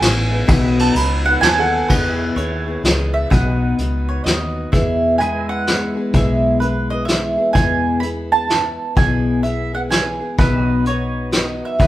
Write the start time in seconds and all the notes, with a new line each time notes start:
Already playing: G#4 B4 E5 G#5
0.00 A1 E3 G#3 B3 E4, snare, ride
0.29 E3 G#3 B3 E4
0.46 B1 B2 F#3 B3 D#4 F#4 G#4 B4, kick, ride
0.51 E5
0.71 F#4 D#5
0.79 A5, ride
0.92 C#2 F#3 B3 D#4 F#4 A#5 B5, ride
1.24 B3 D#4 F#4 F#5
1.41 D#2 F#3 B3 D#4 F#4 G#5 A5, snare, ride
1.58 A4 F#5
1.88 E2 B2 E3 B3 E4 F#4 G#4 B4, kick, crash
1.93 D#5
2.13 G#4 E5
2.36 D#2 E3 B3 E4 G#4 C#5, closed hi-hat
2.66 E3 B3 E4 G#4
2.83 C#2 E3 B3 E4 G#4 D#5, snare, closed hi-hat
3.14 E5
3.30 B1 B2 F#3 B3 D#4 F#4 G#4 B4 D#5 F#5, kick, closed hi-hat
3.56 F#4
3.78 C#2 F#3 B3 D#4 F#4, closed hi-hat
4.09 C#5
4.24 D#2 F#3 B3 D#4 F#4 D#5, snare, closed hi-hat
4.72 E2 B2 E3 B3 E4 G#4 E5, kick, closed hi-hat
5.18 E3 G#3 B3 E4 G#4 B4 G#5, closed hi-hat
5.23 D#5
5.43 E5
5.49 F#5
5.66 E3 B3 E4 G#4, snare, closed hi-hat
5.95 E3 B3 E4 G#4
6.13 B1 E2 B2 E3 B3 E4 G#4 E5, kick, closed hi-hat
6.60 E3 B3 E4 G#4 B4, closed hi-hat
6.90 E3 B3 E4 G#4 D#5
7.05 E3 B3 E4 G#4 E5, snare, closed hi-hat
7.37 E3 B3 E4 G#4
7.53 E2 B2 E3 B3 E4 G#4 G#5, kick, closed hi-hat
8.00 E3 B3 E4 G#4 B5, closed hi-hat
8.32 E3 B3 E4 G#4 A5
8.48 E3 B3 E4, snare, closed hi-hat
8.95 B1 E2 B2 E3 B3 E4 G#4 G#5, kick, closed hi-hat
9.43 E3 B3 E4 G#4 E5, closed hi-hat
9.73 E3 B3 E4 G#4 F#5
9.89 E3 B3 E4 G#4 G#5, snare, closed hi-hat
10.20 E3 B3 E4 G#4
10.38 B1 B2 F#3 B3 D#4 F#4 G#4 B4 E5, kick, closed hi-hat
10.61 F#4 D#5
10.85 F#3 B3 D#4 F#4 C#5, closed hi-hat
11.31 F#3 B3 D#4 F#4 D#5, snare, closed hi-hat
11.65 E5
11.79 E2 B2 E3 G#3 B3 E4 F#4 B4, kick, closed hi-hat
11.83 D#4